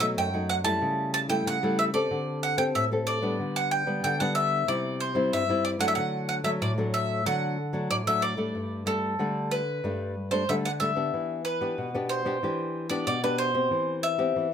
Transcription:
Already playing: B2
0.00 F#3 A3 D#4 E5
0.17 F#2 G5
0.34 F#3 A3 D#4
0.49 F#5
0.64 G3 A3 E4 A5
0.82 C#3
1.14 A5
1.29 G3 A3 E4 G5
1.46 C#3 F#5
1.63 G3 A3 E4
1.79 E5
1.93 C4 G4 A4 D5
2.11 D3
2.43 F#5
2.57 C4 G4 A4 G5
2.75 A2 E5
2.92 C4 G4 A4
3.07 D5
3.22 G3 B3 D4
3.39 D3
3.56 F#5
3.71 G5
3.86 G3 B3 D4
4.04 D3 G5
4.20 G3 B3 D4 F#5
4.35 E5
4.68 C3 G3 C4 E4 D5
5.00 C5
5.15 G3 C4 E4
5.33 G2 E5
5.49 G3 C4 E4
5.65 D5
5.79 F#3 A3 D4 F#5
5.88 E5
5.95 D3 F#5
6.29 F#5
6.44 F#3 A3 D4 E5
6.61 A2 D5
6.78 F#3 A3 D4
6.94 E5
7.26 D3 F#3 A3 D4 F#5
7.73 F#3 A3 D4
7.91 A2 D5
8.07 F#3 A3 D4 E5
8.22 D5
8.37 G3 A3 D4
8.55 G2
8.86 G3 A3 D4 A4
9.19 D3 G3 A3 D4
9.51 B4
9.84 G2 G3 A3 D4
10.31 G3 A3 D4 C5
10.49 D3 G3 A3 D4 E5
10.65 F#5
10.80 G3 A3 D4 E5
10.96 B3 D4 G4
11.14 E3
11.45 B4
11.61 B3 D4 G4
11.78 B2
11.94 B3 D4 G4
12.09 C5
12.25 B3 D4 G4
12.43 E3 D4 G4
12.90 B3 D4 G4 D5
13.07 B2 D5
13.24 B3 D4 G4 B4
13.38 C5
13.54 C4 G4
13.71 E3
14.03 E5
14.18 B3 C4 G4
14.36 E3

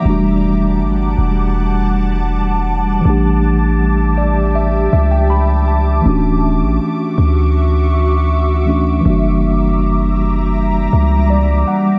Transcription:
Already playing: G3
0.01 E1 E3 G3
0.05 A3 D4 F#5 A5 D6
0.10 F#4
0.80 G1
1.18 E1
3.01 E3 G3
3.05 A1 A3 D4 G4 E5
3.10 G4
4.18 D5
4.55 E5
4.93 C#2 E5
5.11 G5
5.30 B5
5.68 A5
6.01 E3 A3 F#4 E5 C#6
6.06 D1 C#4 D4
6.10 F#4
6.62 A1
7.18 D2
8.66 E3 A3 C#4 D4
8.70 F#4
9.01 E3 G3
9.05 F#1 G3 A#3 D4 A#5
9.09 F#4
10.93 C#2
11.30 D5
11.68 F#5

